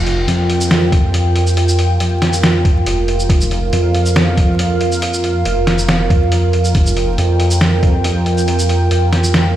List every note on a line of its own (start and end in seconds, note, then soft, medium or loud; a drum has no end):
0.00 0.26 F1 medium
0.00 9.56 F4 medium
0.00 9.56 A#4 medium
0.00 3.29 G5 medium
0.07 closed hi-hat medium
0.28 1.12 F2 loud
0.28 closed hi-hat medium
0.50 closed hi-hat medium
0.61 shaker medium
0.71 snare loud
0.71 closed hi-hat medium
0.92 kick loud
0.92 closed hi-hat medium
1.14 1.99 F2 loud
1.14 closed hi-hat medium
1.36 closed hi-hat medium
1.47 shaker medium
1.57 closed hi-hat medium
1.68 shaker medium
1.79 closed hi-hat medium
2.00 2.85 F2 loud
2.00 closed hi-hat medium
2.22 snare medium
2.22 closed hi-hat medium
2.33 shaker medium
2.43 snare loud
2.43 closed hi-hat medium
2.65 kick loud
2.65 closed hi-hat medium
2.86 3.28 F1 loud
2.86 closed hi-hat medium
3.08 closed hi-hat medium
3.20 shaker medium
3.29 3.71 F1 medium
3.29 6.74 F5 medium
3.29 kick loud
3.29 closed hi-hat medium
3.41 shaker medium
3.51 closed hi-hat medium
3.73 4.58 F2 loud
3.73 closed hi-hat medium
3.95 closed hi-hat medium
4.06 shaker medium
4.16 snare loud
4.16 closed hi-hat medium
4.37 kick loud
4.37 closed hi-hat medium
4.59 5.44 F2 loud
4.59 closed hi-hat medium
4.81 closed hi-hat medium
4.92 shaker medium
5.02 closed hi-hat medium
5.14 shaker medium
5.24 closed hi-hat medium
5.45 6.09 F1 loud
5.45 closed hi-hat medium
5.67 snare medium
5.67 closed hi-hat medium
5.78 shaker medium
5.88 snare loud
5.88 closed hi-hat medium
6.10 6.73 F2 loud
6.10 kick loud
6.10 closed hi-hat medium
6.32 closed hi-hat medium
6.53 closed hi-hat medium
6.65 shaker medium
6.74 7.16 F1 medium
6.74 9.56 G5 medium
6.74 kick loud
6.74 closed hi-hat medium
6.86 shaker medium
6.97 closed hi-hat soft
7.18 8.03 F2 loud
7.18 closed hi-hat medium
7.40 closed hi-hat medium
7.51 shaker medium
7.61 snare loud
7.61 closed hi-hat medium
7.83 kick loud
7.83 closed hi-hat medium
8.04 8.89 F2 loud
8.04 closed hi-hat medium
8.26 closed hi-hat soft
8.38 shaker medium
8.48 closed hi-hat medium
8.59 shaker medium
8.69 closed hi-hat soft
8.91 9.56 F2 loud
8.91 closed hi-hat medium
9.13 snare medium
9.13 closed hi-hat medium
9.24 shaker medium
9.34 snare loud
9.34 closed hi-hat medium